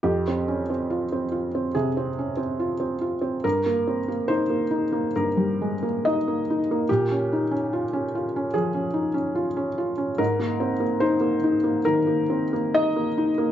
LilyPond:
\new Staff \with { instrumentName = "Felt piano" } { \time 4/4 \key f \minor \tempo 4 = 72 << { g'2 aes'2 | bes'4 c''4 bes'4 ees''4 | g'2 aes'2 | bes'4 c''4 bes'4 ees''4 | } \\ { f,16 c'16 des'16 c'16 f'16 c'16 f'16 c'16 c16 c'16 des'16 c'16 f'16 c'16 f'16 c'16 | g,16 bes16 c'16 bes16 ees'16 bes16 ees'16 bes16 g,16 g16 aes16 bes16 ees'16 bes16 ees'16 bes16 | bes,16 des'16 ees'16 des'16 f'16 des'16 f'16 des'16 f16 des'16 ees'16 des'16 f'16 des'16 f'16 des'16 | aes,16 bes16 c'16 bes16 ees'16 bes16 ees'16 bes16 ees16 bes16 c'16 bes16 ees'16 bes16 ees'16 bes16 | } >> }